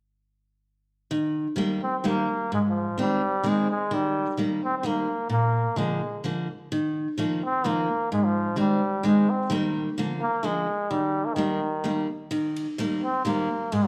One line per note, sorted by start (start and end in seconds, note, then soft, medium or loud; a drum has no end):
1.11 1.47 D#3 medium
1.56 1.80 D#3 medium
1.56 1.80 G3 soft
1.56 1.81 A#3 medium
1.83 2.00 C4 medium
2.00 2.09 C4 medium
2.04 2.27 D#3 soft
2.04 2.27 G3 soft
2.04 2.27 A#3 medium
2.04 2.53 A#3 medium
2.52 2.87 G#2 medium
2.52 2.59 G#3 medium
2.68 2.98 F3 medium
2.98 3.20 D#3 soft
2.98 3.50 G3 medium
2.98 3.21 G#3 soft
2.98 3.21 C4 medium
3.43 3.66 D#3 medium
3.43 3.67 G#3 soft
3.43 3.68 C4 medium
3.49 3.70 G#3 medium
3.71 3.96 G#3 medium
3.91 4.26 D#3 medium
3.91 4.39 G3 medium
4.37 4.60 D#3 soft
4.37 4.60 G3 soft
4.37 4.61 A#3 medium
4.65 4.78 C4 medium
4.78 4.89 C4 medium
4.83 5.06 D#3 medium
4.83 5.06 G3 soft
4.83 5.07 A#3 medium
4.83 5.31 A#3 medium
5.29 5.65 A#2 medium
5.29 5.79 A#3 medium
5.76 5.99 D3 soft
5.76 6.00 F3 soft
5.76 6.24 G#3 medium
5.76 6.00 A#3 medium
6.24 6.47 D3 soft
6.24 6.47 F3 soft
6.24 6.47 A#3 medium
6.72 7.07 D#3 medium
7.18 7.41 D#3 medium
7.18 7.41 F3 soft
7.18 7.41 A#3 medium
7.44 7.69 C4 medium
7.64 7.87 D#3 medium
7.64 7.87 F3 soft
7.64 7.88 A#3 medium
7.64 8.11 A#3 medium
8.12 8.47 G#2 medium
8.12 8.26 G#3 medium
8.24 8.58 F3 medium
8.56 8.79 D#3 soft
8.56 9.08 G3 medium
8.56 8.80 G#3 soft
8.56 8.80 C4 medium
9.03 9.26 D#3 medium
9.03 9.27 G#3 medium
9.03 9.31 G#3 medium
9.03 9.27 C4 soft
9.30 9.51 C4 medium
9.50 9.88 D#3 medium
9.50 9.89 G3 medium
9.50 9.89 A#3 medium
9.98 10.20 D3 medium
9.98 10.20 F3 medium
9.98 10.20 A#3 medium
10.21 10.47 A#3 medium
10.43 10.65 D3 medium
10.43 10.66 F3 soft
10.43 10.92 G#3 medium
10.43 10.66 A#3 medium
10.90 11.26 D#3 medium
10.90 11.27 G3 medium
11.25 11.36 A#3 medium
11.34 12.08 D#3 medium
11.34 11.59 D#3 soft
11.34 11.59 G3 soft
11.38 11.60 A#3 medium
11.84 12.06 D#3 soft
11.84 12.07 G3 soft
11.84 12.07 A#3 medium
12.31 12.66 D#3 medium
12.31 ride soft
12.56 ride soft
12.78 13.01 D#3 medium
12.78 13.01 G3 soft
12.78 13.01 A#3 medium
12.78 ride soft
13.03 13.24 C4 medium
13.25 13.47 D#3 medium
13.25 13.48 G3 soft
13.25 13.75 A#3 medium
13.25 13.48 A#3 medium
13.25 ride soft
13.72 13.87 G#2 medium
13.72 13.87 G#3 medium
13.72 ride soft